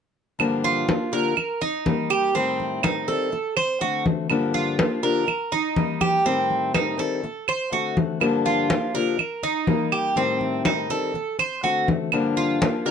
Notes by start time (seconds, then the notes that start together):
0.39 G2 D3 F3 A#3 D4 G4, high conga, claves
0.64 F4, high conga
0.88 F3 A#3 D4 G4, high conga
1.12 D3 F3 A#3 D4 G4 A#4
1.36 muted steel-string acoustic guitar stroke, high conga, claves
1.61 D#4, high conga
1.85 G3 A#3 D#4 G4, high conga
2.10 G4, claves
2.34 A2 D#3 G3 C4, high conga
2.60 high conga
2.83 A2 D#3 G3 C4 D#4, high conga, claves
3.08 D#3 G3 C4 A4, high conga
3.32 muted steel-string acoustic guitar stroke, high conga
3.57 C5, high conga, claves
3.80 D3 A3 C4 F#4, high conga
4.06 high conga
4.29 G2 D3 F3 A#3 D4 G4, high conga, claves
4.54 F4, high conga
4.79 F3 A#3 D4 G4, high conga
5.03 D3 F3 A#3 D4 G4 A#4
5.27 muted steel-string acoustic guitar stroke, high conga, claves
5.52 D#4, high conga
5.76 G3 A#3 D#4 G4, high conga
6.01 G4, high conga, claves
6.25 A2 D#3 G3 C4, high conga
6.50 high conga
6.74 A2 D#3 G3 C4 D#4, high conga, claves
6.98 D#3 G3 C4 A4, high conga
7.24 muted steel-string acoustic guitar stroke, high conga
7.48 C5, high conga, claves
7.71 D3 A3 C4 F#4, high conga
7.97 high conga
8.20 G2 D3 F3 A#3 D4 G4, high conga, claves
8.46 F4, high conga
8.70 F3 A#3 D4 G4, high conga
8.94 D3 F3 A#3 D4 G4 A#4
9.19 muted steel-string acoustic guitar stroke, high conga, claves
9.43 D#4, high conga
9.67 G3 A#3 D#4 G4, high conga
9.92 G4, claves
10.16 A2 D#3 G3 C4, high conga
10.41 high conga
10.65 A2 D#3 G3 C4 D#4, high conga, claves
10.90 D#3 G3 C4 A4, high conga
11.14 muted steel-string acoustic guitar stroke, high conga
11.39 C5, high conga, claves
11.63 D3 A3 C4 F#4, high conga
11.88 high conga
12.12 G2 D3 F3 A#3 D4 G4, high conga, claves
12.37 F4, high conga
12.61 F3 A#3 D4 G4, high conga
12.85 D3 F3 A#3 D4 G4 A#4